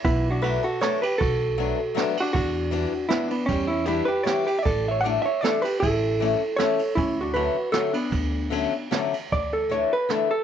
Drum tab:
RD |x-x-xx|x-x-xx|x-x-xx|x-x-xx|
HH |------|------|------|------|
SD |----o-|----o-|----o-|----o-|
BD |o-----|o-----|o-----|o-----|

RD |x-x-xx|x-x-xx|x-x-xx|x-x-xx|
HH |------|------|------|------|
SD |----o-|----o-|----o-|----o-|
BD |o-----|o-----|o-----|o-----|

RD |------|
HH |x-x-x-|
SD |----o-|
BD |o-----|